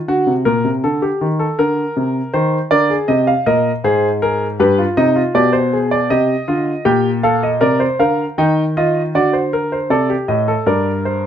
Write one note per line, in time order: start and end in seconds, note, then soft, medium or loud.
0.08 0.27 D3 medium
0.08 0.32 F#4 medium
0.27 0.45 C3 medium
0.45 0.64 A#2 medium
0.45 0.69 A#4 medium
0.64 0.83 C3 medium
0.84 1.07 D3 medium
0.84 1.02 A4 medium
1.02 1.26 G4 medium
1.21 1.45 D#3 medium
1.39 1.58 A4 medium
1.59 1.82 D3 medium
1.59 2.32 A#4 medium
1.97 2.20 C3 medium
2.34 2.57 D#3 medium
2.34 2.57 C5 medium
2.71 2.95 D3 medium
2.71 2.89 A#4 medium
2.71 2.94 D5 medium
2.90 3.09 G#4 medium
3.08 3.32 C3 medium
3.08 3.32 G4 medium
3.08 3.27 D#5 medium
3.27 3.46 F5 medium
3.46 3.70 A#2 medium
3.46 3.70 A#4 medium
3.46 3.70 D#5 medium
3.84 4.57 G#2 medium
3.84 4.08 G#4 medium
3.84 4.08 C5 medium
4.22 4.46 G#4 medium
4.22 4.46 A#4 medium
4.59 4.83 G2 medium
4.59 4.78 G4 medium
4.59 4.83 B4 medium
4.78 4.97 F4 medium
4.97 5.21 C3 medium
4.97 5.16 D#4 medium
4.97 5.21 D#5 medium
5.16 5.34 F4 medium
5.35 6.08 B2 medium
5.35 5.58 G4 medium
5.35 5.53 D5 medium
5.53 5.77 C5 medium
5.73 5.96 G#4 medium
5.91 6.10 D5 medium
6.10 6.34 C3 medium
6.10 6.34 G4 medium
6.10 6.84 D#5 medium
6.48 6.72 D3 medium
6.48 6.72 F4 medium
6.85 7.60 A#2 medium
6.85 7.09 G4 medium
6.85 7.09 G5 medium
7.23 7.48 A4 medium
7.23 7.42 F5 medium
7.43 7.62 D#5 medium
7.61 7.85 C3 medium
7.61 7.80 A#4 medium
7.61 7.85 D5 medium
7.80 7.99 C5 medium
7.99 8.23 D3 medium
7.99 8.24 A#4 medium
7.99 8.23 F5 medium
8.38 9.12 D#3 medium
8.38 8.62 D#4 medium
8.38 8.62 G5 medium
8.77 9.00 F4 medium
8.77 9.01 D#5 medium
9.15 9.89 D3 medium
9.15 9.38 F#4 medium
9.15 9.33 D5 medium
9.33 9.52 C5 medium
9.53 9.77 A#4 medium
9.72 9.90 C5 medium
9.90 10.14 C3 medium
9.90 10.09 A4 medium
9.90 10.14 D5 medium
10.10 10.33 G4 medium
10.28 10.52 A2 medium
10.28 10.52 D#5 medium
10.48 10.66 A4 medium
10.66 11.27 G2 medium
10.66 11.27 A#4 medium
10.66 10.90 D5 medium
11.05 11.27 C5 medium